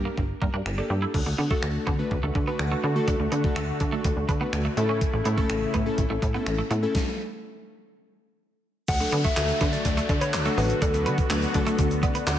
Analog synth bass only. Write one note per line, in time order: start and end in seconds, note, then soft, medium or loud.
0.18 0.33 G1 loud
0.42 0.49 G2 loud
0.54 0.61 G2 loud
0.66 0.81 G1 loud
0.90 1.06 G2 medium
1.14 1.22 D2 loud
1.26 1.34 D2 medium
1.38 1.54 D3 medium
1.63 1.78 D2 medium
1.87 2.03 D3 loud
2.11 2.19 D2 loud
2.23 2.31 D2 medium
2.35 2.51 D3 loud
2.59 2.75 D2 loud
2.84 2.99 D3 medium
3.08 3.16 D2 loud
3.20 3.28 D2 medium
3.32 3.48 D3 medium
3.56 3.72 D2 medium
3.81 3.96 D3 loud
4.05 4.12 D2 loud
4.17 4.24 D2 medium
4.29 4.44 D3 loud
4.53 4.69 D2 loud
4.77 5.01 A2 loud
5.13 5.21 A1 loud
5.26 5.41 A2 loud
5.50 5.65 A1 loud
5.74 5.90 A2 loud
5.98 6.06 A1 loud
6.10 6.18 A1 medium
6.22 6.38 A2 loud
6.46 6.62 A1 loud
6.71 6.86 A2 loud
8.88 9.04 D2 loud
9.12 9.28 D3 loud
9.37 9.52 D2 loud
9.61 9.77 D3 loud
9.85 10.01 D2 loud
10.09 10.35 D3 loud
10.33 10.49 D2 loud
10.57 10.73 A1 medium
10.82 11.07 D2 loud
11.06 11.22 D3 loud
11.30 11.46 D2 loud
11.55 11.70 D3 loud
11.79 12.04 D2 loud
12.03 12.19 D3 loud
12.27 12.39 D2 medium